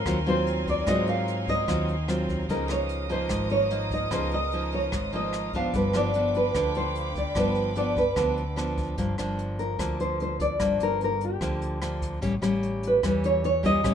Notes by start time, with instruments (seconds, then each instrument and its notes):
Already playing: nylon-string guitar A#4, violin section A#4 F5 G#5 C6
0.06 fingered electric bass D#2, nylon-string guitar D#3 F#3 C4 F4, kick, cross-stick, closed hi-hat
0.26 nylon-string guitar F#3 C4 F4 C5, closed hi-hat
0.47 closed hi-hat
0.67 nylon-string guitar D5, kick, closed hi-hat
0.86 fingered electric bass G#2, nylon-string guitar G#2 F#3 C4 F4 D#5, kick, cross-stick, closed hi-hat
1.07 nylon-string guitar F5, closed hi-hat
1.28 closed hi-hat
1.48 nylon-string guitar D#5, kick, closed hi-hat
1.68 fingered electric bass D#2, nylon-string guitar D#3 F#3 C4 F4, kick, cross-stick, closed hi-hat
1.88 closed hi-hat
2.08 nylon-string guitar F#3 C4 F4, cross-stick, closed hi-hat
2.29 kick, closed hi-hat
2.47 fingered electric bass C#2, nylon-string guitar C#3 F3 A#3 D#4 A#4, violin section A#4 D#5 D#6, kick, closed hi-hat
2.69 nylon-string guitar C#5, cross-stick, closed hi-hat
2.89 closed hi-hat
3.09 nylon-string guitar F3 A#3 D#4 C5, closed hi-hat
3.29 fingered electric bass G#1, nylon-string guitar G#2, kick, cross-stick, closed hi-hat
3.50 nylon-string guitar C#5, closed hi-hat
3.70 nylon-string guitar F3 A#3 D#4, closed hi-hat
3.91 nylon-string guitar D#5, kick, closed hi-hat
4.11 fingered electric bass C#2, nylon-string guitar C#3 F3 A#3 D#4 C5, kick, cross-stick, closed hi-hat
4.31 nylon-string guitar D#5, closed hi-hat
4.52 nylon-string guitar F3 A#3 D#4, closed hi-hat
4.72 nylon-string guitar C#5, closed hi-hat
4.92 fingered electric bass G#1, nylon-string guitar G#2, kick, cross-stick, closed hi-hat
5.13 nylon-string guitar F3 A#3 D#4 D#5, closed hi-hat
5.33 cross-stick, closed hi-hat
5.53 nylon-string guitar F3 B3 D4 F5, kick, closed hi-hat
5.73 fingered electric bass G1, nylon-string guitar G2 B4, violin section F5 G5 B5 D6, kick, closed hi-hat
5.93 nylon-string guitar F3 B3 D4 D5, cross-stick, closed hi-hat
6.14 nylon-string guitar F3 B3 D4, closed hi-hat
6.34 nylon-string guitar B4, closed hi-hat
6.55 fingered electric bass D2, nylon-string guitar D3 F3 D4, kick, cross-stick, closed hi-hat
6.75 nylon-string guitar C5, closed hi-hat
6.95 closed hi-hat
7.15 nylon-string guitar D5, kick, closed hi-hat
7.35 fingered electric bass G1, nylon-string guitar G2 F3 B3 D4 B4, kick, cross-stick, closed hi-hat
7.55 closed hi-hat
7.75 nylon-string guitar F3 B3 D4 D5, closed hi-hat
7.96 nylon-string guitar B4, kick, closed hi-hat
8.16 fingered electric bass D2, nylon-string guitar D3 F3 B3 D4, kick, cross-stick, closed hi-hat
8.37 closed hi-hat
8.56 nylon-string guitar F3 B3 D4, cross-stick, closed hi-hat
8.78 kick, closed hi-hat
8.98 fingered electric bass G1, nylon-string guitar G2 F3 A#3 D4, kick, closed hi-hat
9.18 fingered electric bass G1, nylon-string guitar F3 A#3 D4, cross-stick, closed hi-hat
9.39 closed hi-hat
9.59 nylon-string guitar A#4, closed hi-hat
9.79 fingered electric bass D2, nylon-string guitar D3 F3 A#3 D4, kick, cross-stick, closed hi-hat
10.00 nylon-string guitar C5, closed hi-hat
10.20 nylon-string guitar C5, closed hi-hat
10.40 nylon-string guitar D5, kick, closed hi-hat
10.59 fingered electric bass G1, nylon-string guitar G2 F3 A#3 D4, kick, cross-stick, closed hi-hat
10.79 fingered electric bass G1, nylon-string guitar A#4, closed hi-hat
11.01 nylon-string guitar A#4, closed hi-hat
11.21 nylon-string guitar G4, closed hi-hat
11.41 fingered electric bass D2, nylon-string guitar D3 F3 A#3 D4, kick, cross-stick, closed hi-hat
11.62 closed hi-hat
11.82 nylon-string guitar F3 A#3 D4, cross-stick, closed hi-hat
12.02 kick, closed hi-hat
12.21 fingered electric bass A1, nylon-string guitar A2 G3 A#3 C#4, kick, closed hi-hat
12.42 fingered electric bass A1, nylon-string guitar G3 A#3 C#4, cross-stick, closed hi-hat
12.63 closed hi-hat
12.83 closed hi-hat
12.87 nylon-string guitar B4
13.03 fingered electric bass E2, nylon-string guitar E3 G3 A#3 C#4 B4, kick, cross-stick, closed hi-hat
13.24 nylon-string guitar C#5, closed hi-hat
13.44 nylon-string guitar C#5, closed hi-hat
13.63 nylon-string guitar G3 A#3 C#4 D#5, kick, closed hi-hat
13.83 fingered electric bass A1, nylon-string guitar A2 G3 A#3 C#4, kick, cross-stick, closed hi-hat